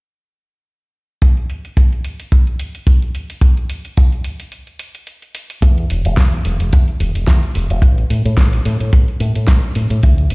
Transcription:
1.22 kick loud
1.22 closed hi-hat soft
1.37 closed hi-hat soft
1.50 closed hi-hat medium
1.65 closed hi-hat soft
1.77 kick loud
1.77 closed hi-hat soft
1.92 closed hi-hat soft
2.05 closed hi-hat medium
2.20 closed hi-hat soft
2.32 kick loud
2.32 closed hi-hat soft
2.47 closed hi-hat soft
2.59 closed hi-hat medium
2.75 closed hi-hat soft
2.87 kick loud
2.87 closed hi-hat soft
3.02 closed hi-hat soft
3.15 closed hi-hat medium
3.30 closed hi-hat medium
3.41 kick loud
3.41 closed hi-hat soft
3.57 closed hi-hat soft
3.70 closed hi-hat medium
3.85 closed hi-hat soft
3.97 kick loud
3.97 closed hi-hat soft
4.12 closed hi-hat soft
4.24 closed hi-hat medium
4.40 closed hi-hat soft
4.52 closed hi-hat soft
4.67 closed hi-hat soft
4.79 closed hi-hat medium
4.95 closed hi-hat soft
5.07 closed hi-hat soft
5.22 closed hi-hat soft
5.35 closed hi-hat medium
5.50 closed hi-hat medium
5.62 5.84 E2 medium
5.62 kick medium
5.62 closed hi-hat medium
5.78 closed hi-hat soft
5.90 6.01 E1 medium
5.90 open hi-hat loud
6.05 6.14 E1 medium
6.05 closed hi-hat soft
6.17 6.39 E2 medium
6.17 kick loud
6.17 snare loud
6.17 closed hi-hat soft
6.33 closed hi-hat soft
6.45 6.56 E1 medium
6.45 open hi-hat loud
6.60 6.69 E1 medium
6.60 closed hi-hat soft
6.73 6.84 E2 medium
6.73 kick loud
6.73 closed hi-hat medium
6.88 closed hi-hat soft
7.00 7.11 E1 medium
7.00 open hi-hat loud
7.15 7.24 E1 medium
7.15 closed hi-hat medium
7.27 7.39 E2 medium
7.27 kick loud
7.27 snare loud
7.27 closed hi-hat medium
7.43 closed hi-hat soft
7.55 7.66 E1 medium
7.55 open hi-hat medium
7.70 7.79 E1 medium
7.70 closed hi-hat medium
7.82 8.04 A1 medium
7.82 kick loud
7.82 closed hi-hat soft
7.98 closed hi-hat soft
8.10 8.22 A2 medium
8.10 open hi-hat loud
8.25 8.35 A2 medium
8.25 closed hi-hat medium
8.37 8.59 A1 medium
8.37 kick loud
8.37 snare loud
8.37 closed hi-hat medium
8.53 open hi-hat medium
8.65 8.77 A2 medium
8.65 open hi-hat loud
8.80 8.90 A2 medium
8.80 closed hi-hat medium
8.93 9.04 A1 medium
8.93 kick loud
8.93 closed hi-hat medium
9.08 closed hi-hat soft
9.20 9.32 A2 medium
9.20 open hi-hat loud
9.35 9.45 A2 medium
9.35 closed hi-hat medium
9.47 9.59 A1 medium
9.47 kick loud
9.47 snare loud
9.47 closed hi-hat medium
9.63 closed hi-hat soft
9.75 9.87 A2 medium
9.75 open hi-hat medium
9.90 10.00 A2 medium
9.90 closed hi-hat medium
10.03 10.24 D2 loud
10.03 kick loud
10.03 closed hi-hat soft
10.18 closed hi-hat soft
10.30 10.35 A1 medium
10.30 open hi-hat loud

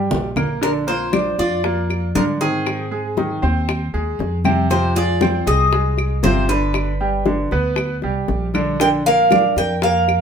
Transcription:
0.00 0.27 G3 medium
0.00 0.27 G4 medium
0.11 1.32 A#1 medium
0.11 high bongo medium
0.11 low conga medium
0.36 0.57 A#3 medium
0.36 0.57 A#4 medium
0.36 low bongo medium
0.36 low conga medium
0.36 claves medium
0.61 0.83 D3 medium
0.61 0.83 D4 medium
0.61 0.70 D4 medium
0.61 0.70 A#4 medium
0.61 high bongo medium
0.61 high conga soft
0.87 1.08 A#3 medium
0.87 1.36 F4 medium
0.87 1.08 A#4 medium
0.87 1.35 C5 medium
0.87 high conga soft
1.12 1.55 D4 medium
1.12 1.55 D5 medium
1.12 high bongo medium
1.12 high conga medium
1.12 claves medium
1.39 2.11 F2 medium
1.39 2.11 F4 medium
1.39 2.12 D5 medium
1.39 high bongo soft
1.39 high conga soft
1.64 2.06 A#3 medium
1.64 2.06 A#4 medium
1.64 high bongo medium
1.64 high conga soft
1.90 high bongo soft
1.90 high conga soft
1.90 claves medium
2.15 3.36 G#2 medium
2.15 2.36 D3 medium
2.15 2.36 D4 medium
2.15 2.23 D4 medium
2.15 2.22 A#4 medium
2.15 high bongo soft
2.15 low bongo medium
2.15 high conga medium
2.41 2.83 D#3 medium
2.41 3.39 C4 medium
2.41 2.83 D#4 medium
2.41 3.39 G#4 medium
2.41 high bongo soft
2.41 high conga soft
2.66 high bongo medium
2.66 high conga soft
2.66 claves medium
2.91 3.12 G#3 medium
2.91 3.13 G#4 medium
2.91 high conga soft
3.17 3.38 D#3 medium
3.17 3.39 D#4 medium
3.17 high bongo medium
3.17 high conga medium
3.42 3.90 D#2 medium
3.42 3.84 C4 medium
3.42 3.85 C5 medium
3.42 high bongo soft
3.42 high conga soft
3.69 high bongo medium
3.69 high conga soft
3.69 claves medium
3.94 4.18 D#2 medium
3.94 4.36 G#3 medium
3.94 4.36 G#4 medium
3.94 high bongo soft
3.94 high conga soft
4.19 5.41 F2 medium
4.19 high bongo soft
4.19 low bongo medium
4.19 high conga soft
4.44 4.66 C3 medium
4.44 4.66 C4 medium
4.44 high bongo soft
4.44 high conga medium
4.44 claves medium
4.70 4.91 C3 medium
4.70 4.92 C4 medium
4.70 4.94 F4 medium
4.70 4.96 C5 medium
4.70 high bongo medium
4.96 5.17 G#3 medium
4.96 5.43 F4 medium
4.96 5.17 G#4 medium
4.96 5.47 D5 loud
4.96 high conga soft
5.21 5.64 C4 medium
5.21 5.64 C5 medium
5.21 high bongo medium
5.21 high conga medium
5.21 claves medium
5.47 6.20 C2 medium
5.47 6.20 G#4 medium
5.47 6.20 D#5 medium
5.47 high bongo soft
5.47 high conga soft
5.73 6.15 G#3 medium
5.73 6.15 G#4 medium
5.73 high bongo medium
5.73 high conga soft
5.98 high bongo soft
5.98 high conga soft
5.98 claves medium
6.23 7.45 G1 medium
6.23 6.45 C3 medium
6.23 6.45 C4 medium
6.23 6.48 F4 medium
6.23 6.50 C5 medium
6.23 high bongo soft
6.23 low bongo medium
6.23 high conga medium
6.49 6.91 D3 medium
6.49 6.91 D4 medium
6.49 7.48 D4 medium
6.49 7.48 B4 medium
6.49 high bongo soft
6.49 high conga soft
6.74 high bongo medium
6.74 high conga soft
6.74 claves medium
7.00 7.22 G3 medium
7.00 7.22 G4 medium
7.00 high conga soft
7.26 7.47 D3 medium
7.26 7.47 D4 medium
7.26 high bongo medium
7.26 high conga medium
7.51 7.99 D2 medium
7.51 7.94 B3 medium
7.51 7.94 B4 medium
7.51 high bongo soft
7.51 high conga soft
7.76 high bongo medium
7.76 high conga soft
7.76 claves medium
8.02 8.27 C2 medium
8.02 8.45 G3 medium
8.02 8.45 G4 medium
8.02 high bongo soft
8.02 high conga soft
8.28 9.50 A#1 medium
8.28 high bongo soft
8.28 low bongo medium
8.28 high conga soft
8.54 8.75 D3 medium
8.54 8.75 D4 medium
8.54 high bongo soft
8.54 high conga medium
8.54 claves medium
8.80 9.01 D3 medium
8.80 9.01 D4 medium
8.80 8.87 A#4 medium
8.80 8.88 G5 loud
8.80 high bongo medium
9.06 9.27 A#3 medium
9.06 9.27 A#4 medium
9.06 9.54 A#4 medium
9.06 9.53 F5 medium
9.06 high conga soft
9.31 9.73 D4 medium
9.31 9.73 D5 medium
9.31 high bongo medium
9.31 high conga medium
9.31 claves medium
9.56 10.21 F2 medium
9.56 9.81 A#4 medium
9.56 9.83 G5 medium
9.56 high bongo soft
9.56 high conga soft
9.82 10.21 A#3 medium
9.82 10.21 A#4 medium
9.82 10.21 F5 medium
9.82 high bongo medium
9.82 high conga soft
10.08 high bongo soft
10.08 high conga soft
10.08 claves medium

